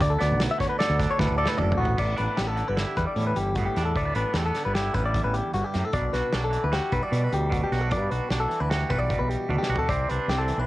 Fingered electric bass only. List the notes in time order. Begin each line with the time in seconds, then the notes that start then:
0.01 D2
0.21 D2
0.31 B1
0.90 D2
1.20 D2
1.31 D2
1.61 F#1
1.80 A1
1.99 A1
2.20 A1
2.39 A1
2.69 G1
2.97 E2
3.16 A2
3.37 G1
3.77 E2
3.96 D2
4.16 A1
4.34 E2
4.66 G1
4.95 A1
5.25 A1
5.54 G1
5.75 F#2
5.94 B1
6.13 B1
6.34 B1
6.64 D2
6.92 B1
7.12 B2
7.32 D2
7.71 B1
7.92 G2
8.11 B1
8.30 B1
8.60 D2
8.91 B1
9.20 B1
9.49 D2
9.69 B1
9.89 C2
10.11 C2
10.28 C2
10.58 B1